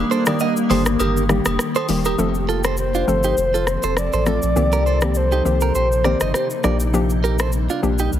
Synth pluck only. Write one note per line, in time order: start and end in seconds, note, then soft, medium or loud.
0.00 0.23 D#3 medium
0.00 0.23 G3 medium
0.00 0.23 A#3 medium
0.00 0.23 G4 loud
0.27 0.45 D#3 medium
0.27 0.45 G3 medium
0.27 0.45 A#3 medium
0.27 0.45 G4 medium
0.70 0.90 D#3 medium
0.70 0.90 G3 medium
0.70 0.90 A#3 medium
0.70 0.90 G4 medium
1.29 1.49 D#3 medium
1.29 1.49 G3 medium
1.29 1.49 A#3 medium
1.29 1.50 G4 medium
1.89 2.09 D#3 medium
1.89 2.09 G3 medium
1.89 2.09 A#3 medium
1.89 2.09 G4 medium
2.18 3.01 F3 medium
2.18 3.01 A3 medium
2.18 3.01 C4 medium
2.18 3.01 A4 loud
3.07 3.35 F3 medium
3.07 3.35 A3 medium
3.07 3.35 C4 medium
3.07 3.35 A4 medium
4.26 4.54 F3 medium
4.26 4.54 A3 medium
4.26 4.54 C4 medium
4.26 4.54 A4 medium
4.56 4.98 D#3 medium
4.56 4.98 A#3 medium
4.56 4.98 C4 medium
4.56 4.98 G4 loud
5.02 5.20 D#3 medium
5.02 5.20 A#3 medium
5.02 5.20 C4 medium
5.02 5.20 G4 medium
5.45 5.65 D#3 medium
5.45 5.65 A#3 medium
5.45 5.65 C4 medium
5.45 5.65 G4 medium
6.04 6.24 D#3 medium
6.04 6.25 A#3 medium
6.04 6.25 C4 medium
6.04 6.25 G4 medium
6.64 6.84 F3 medium
6.64 6.84 A#3 medium
6.64 6.84 D4 medium
6.64 6.84 G4 medium
6.93 7.76 F3 medium
6.93 7.76 A#3 medium
6.93 7.76 D4 medium
6.93 7.76 G4 loud
7.82 8.10 F3 medium
7.82 8.10 A#3 medium
7.82 8.10 D4 medium
7.82 8.11 G4 medium